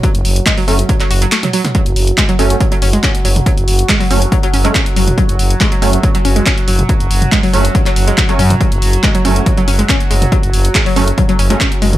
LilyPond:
<<
  \new Staff \with { instrumentName = "Synth stab" } { \time 4/4 \key fis \minor \tempo 4 = 140 r4. <fis a cis'>16 r2 r16 | r4. <fis a cis'>8 r2 | r4. <fis a cis'>16 r4 <fis a cis'>16 r4 | r4. <fis a cis'>8 r2 |
r4. <fis a cis'>16 r4. <fis a cis'>16 r8 | r4. <fis a cis'>8 r2 | r4. <fis a cis'>16 r4 <fis a cis'>16 r4 | }
  \new Staff \with { instrumentName = "Synth arpeggio sound" } { \clef bass \time 4/4 \key fis \minor fis16 r8. gis16 fis16 r8 fis16 fis16 fis'16 fis16 a16 fis16 fis16 r16 | fis16 r8. gis16 fis16 r8 fis16 fis16 cis'16 gis16 cis'16 r16 fis16 r16 | fis16 r8. gis16 fis16 r8 fis16 fis16 cis'16 gis16 cis'16 r16 fis16 r16 | fis16 r8. gis16 fis16 r8 fis16 fis16 cis'16 gis16 cis'16 r16 fis16 r16 |
fis16 r8. gis16 fis16 r8 fis16 fis16 r16 gis16 fis16 fis16 cis'16 r16 | fis16 r8. gis16 fis16 r8 fis16 fis16 cis'16 gis16 cis'16 r16 gis16 r16 | fis16 r8. gis16 fis16 r8 fis16 fis16 cis'16 gis16 cis'16 r16 gis16 r16 | }
  \new Staff \with { instrumentName = "Synth drone" } { \clef bass \time 4/4 \key fis \minor fis1 | fis1~ | fis1~ | fis1~ |
fis1~ | fis1~ | fis1 | }
  \new Staff \with { instrumentName = "FM bass" } { \clef bass \time 4/4 \key fis \minor r16 fis,,16 fis,,16 r8. fis,,16 r8. fis,,16 r4 r16 | r16 fis,,16 fis,,16 r8. fis,,16 r8. fis,,16 r8. fis,,16 r16 | r16 fis,,16 fis,,16 r8. fis,,16 r8. fis,,16 r8. fis,,16 r16 | r16 fis,,16 fis,,16 r8. fis,,16 r8. fis,,16 r8. fis,,16 r16 |
r16 fis,,16 fis,,16 r8. fis,,16 r8. fis,,16 r8. fis,16 r16 | r16 fis,,16 fis,,16 r8. fis,,16 r8. fis,,16 r8. fis,,16 r16 | r16 fis,,16 fis,,16 r8. fis,,16 r8. fis,,16 r8. fis,,16 r16 | }
  \new DrumStaff \with { instrumentName = "Drums" } \drummode { \time 4/4 <hh bd>16 hh16 hho16 hh16 <hc hh bd>16 hho16 hho16 hh16 <hh bd>16 <hc hh>16 hho16 hh16 <hc hh sn>16 <hh sn toml>16 hho16 <hh sn toml>16 | <hh bd>16 hh16 hho16 hh16 <hc hh bd>16 hh16 hho16 hh16 <hh bd>16 hh16 hho16 hh16 <hc hh bd>16 hh16 hho16 <hh toml>16 | <hh bd>16 hh16 hho16 hh16 <hc hh bd>16 hho16 hho16 hh16 <hh bd>16 hh16 hho16 hh16 <hc hh bd>16 hh16 hho16 <hh toml>16 | <hh bd>16 hh16 hho16 hh16 <hc hh bd>16 hh16 hho16 hh16 <hh bd>16 hh16 hho16 hh16 <hc hh bd>16 hh16 hho16 <hh toml>16 |
<hh bd>16 hh16 hho16 <hh toml>16 <hc hh bd>16 hho16 hho16 hh16 <hh bd>16 <hc hh>16 hho16 hh16 <hc hh bd>16 hh16 hho16 <hh toml>16 | <hh bd>16 hh16 hho16 hh16 <hc hh bd>16 hh16 hho16 hh16 <hh bd>16 hh16 hho16 hh16 <hc hh bd>16 hh16 hho16 <hh toml>16 | <hh bd>16 hh16 hho16 hh16 <hc hh bd>16 hho16 hho16 hh16 <hh bd>16 hh16 hho16 hh16 <hc hh bd>16 hh16 hho16 <hh toml>16 | }
>>